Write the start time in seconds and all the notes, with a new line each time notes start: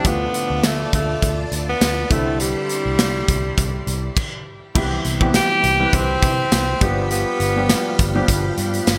0.04 D2 D3 F3 A3 B3 F4 D5 A5, kick, closed hi-hat
0.34 closed hi-hat
0.50 D2
0.63 D2 A3, snare, closed hi-hat, tambourine
0.93 D2 A3, kick, closed hi-hat
1.22 D2, kick, closed hi-hat
1.52 D2, closed hi-hat
1.69 B3
1.81 D2, snare, closed hi-hat, tambourine
2.10 C2 D3 G3 A3 C4 E4 C6, kick, closed hi-hat
2.40 G3, closed hi-hat
2.69 closed hi-hat
2.86 C2
2.99 C2, snare, closed hi-hat, tambourine
3.28 C2, kick, closed hi-hat
3.58 C2, kick, closed hi-hat
3.87 C2, closed hi-hat
4.17 kick, crash
4.75 C2 E3 G3 B3 C4 E4 G4 B4 B5, kick, crash
5.05 C2, closed hi-hat
5.20 E3 G3 B3 C4 G4, kick
5.34 G4, snare, closed hi-hat, tambourine
5.64 C2, closed hi-hat
5.79 E3 G3 C4 G4 B4
5.93 C2 C4, kick, closed hi-hat
6.23 C3, kick, closed hi-hat
6.52 C2, snare, closed hi-hat, tambourine
6.81 G1 F3 G3 B3 D4 G4 F5, kick, closed hi-hat
7.11 B3, closed hi-hat
7.40 G1, closed hi-hat
7.56 F3 G3 B3 D4 G4
7.69 snare, closed hi-hat, tambourine
7.99 G1, kick, closed hi-hat
8.15 F3 G3 B3 D4 G4
8.28 G1, kick, closed hi-hat
8.58 G2, closed hi-hat
8.74 closed hi-hat
8.87 G1, snare, closed hi-hat, tambourine